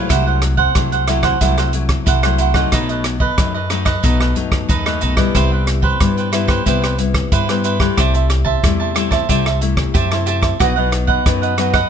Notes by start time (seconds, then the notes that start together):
Already playing: F#3 A3 E4
0.09 C2 C3 E4 A4 C5 F#5, kick, cross-stick, closed hi-hat
0.27 A4 C5 F#5
0.42 muted cavaquinho stroke, cross-stick, closed hi-hat
0.57 A4 C5 F#5, kick
0.75 C2 C3 F#3 A3 E4, kick, cross-stick, closed hi-hat
0.92 A4 C5 F#5, closed hi-hat
1.07 F#3 A3 E4 A4 C5 F#5, cross-stick, closed hi-hat
1.23 A4 C5 F#5, kick, cross-stick
1.41 C2 C3 F#3 A3 E4 A4 C5 F#5, kick, closed hi-hat
1.57 A4 C5 F#5, cross-stick, closed hi-hat
1.73 F#3 A3 E4, muted cavaquinho stroke, closed hi-hat
1.89 kick, cross-stick, closed hi-hat
2.06 C2 C3 E4 A4 C5 F#5, kick, closed hi-hat
2.23 F#3 A3 E4 A4 C5 F#5, cross-stick, closed hi-hat
2.38 E4 A4 C5 F#5, closed hi-hat
2.54 F#3 A3 D#4 A4 C5 F#5, kick, cross-stick
2.72 B1 B2 D#4 A4 B4 D#5, kick, cross-stick, closed hi-hat
2.89 A4 B4 D#5, closed hi-hat
3.04 muted cavaquinho stroke, cross-stick, closed hi-hat
3.20 A4 B4 D#5, kick
3.38 F#2 F#3 A3 D#4, kick, cross-stick, closed hi-hat
3.54 A4 B4 D#5
3.70 F#3 A3 D#4 A4 B4 D#5, cross-stick, closed hi-hat
3.85 A4 B4 D#5, kick, cross-stick
4.03 B1 B2 F#3 A3 D#4 A4 B4 D#5, kick, closed hi-hat
4.20 A4 B4 D#5, cross-stick
4.35 F#2 F#3 A3 D#4, muted cavaquinho stroke, closed hi-hat
4.52 kick, cross-stick
4.69 D#2 F#2 D#4 A4 B4 D#5, kick, closed hi-hat
4.86 F#3 A3 D#4 A4 B4 D#5, cross-stick
5.01 B1 D#4 A4 B4 D#5, closed hi-hat
5.17 G3 B3 E4 A4 B4 D#5, kick, cross-stick, closed hi-hat
5.34 C2 C3 E4 B4 C5 G5, kick, cross-stick, closed hi-hat
5.52 B4 C5 G5
5.67 muted cavaquinho stroke, cross-stick, closed hi-hat
5.82 B4 C5 G5, kick
6.00 G2 G3 B3 E4, kick, cross-stick, closed hi-hat
6.17 B4 C5 G5, closed hi-hat
6.32 G3 B3 E4 B4 C5 G5, cross-stick, closed hi-hat
6.48 B4 C5 G5, kick, cross-stick
6.66 C2 C3 G3 B3 E4 B4 C5 G5, kick, closed hi-hat
6.82 B4 C5 G5, cross-stick, closed hi-hat
6.98 G3 B3 E4, muted cavaquinho stroke, closed hi-hat
7.14 kick, cross-stick, closed hi-hat
7.32 G2 E4 B4 C5 G5, kick, closed hi-hat
7.49 G3 B3 E4 B4 C5 G5, cross-stick, closed hi-hat
7.64 E4 B4 C5 G5, closed hi-hat
7.79 G3 A3 E4 B4 C5 G5, kick, cross-stick
7.97 C2 C3 G4 C5 E5 A5, kick, cross-stick, closed hi-hat
8.14 C5 E5 A5, closed hi-hat
8.29 muted cavaquinho stroke, cross-stick, closed hi-hat
8.45 C5 E5 A5, kick
8.63 E2 C3 G3 A3 E4, kick, cross-stick, closed hi-hat
8.80 C5 E5 A5
8.95 G3 A3 E4 G4 C5 E5 A5, cross-stick, closed hi-hat
9.11 C5 E5 A5, kick, cross-stick
9.29 C2 C3 G3 A3 E4 G4 C5 E5 A5, kick, closed hi-hat
9.45 E5 A5, cross-stick
9.61 G3 A3 E4, muted cavaquinho stroke, closed hi-hat
9.77 kick, cross-stick
9.94 F#2 C3 G4 C5 E5 A5, kick, closed hi-hat
10.11 A3 E4 C5 E5 A5, cross-stick
10.26 G4 C5 E5 A5, closed hi-hat
10.41 C5 E5 A5, kick, cross-stick, closed hi-hat
10.60 B1 B2 F#3 B3 D#4 F#4 B4 D#5 F#5, kick, cross-stick, closed hi-hat
10.76 F#3 B3 D#4 B4 D#5 F#5
10.91 muted cavaquinho stroke, cross-stick, closed hi-hat
11.07 B4 D#5 F#5, kick
11.26 F#2 F#3 B3 D#4, kick, cross-stick, closed hi-hat
11.42 B4 D#5 F#5, closed hi-hat
11.57 F#3 B3 D#4 F#4 B4 D#5 F#5, cross-stick, closed hi-hat
11.73 B4 D#5 F#5, kick, cross-stick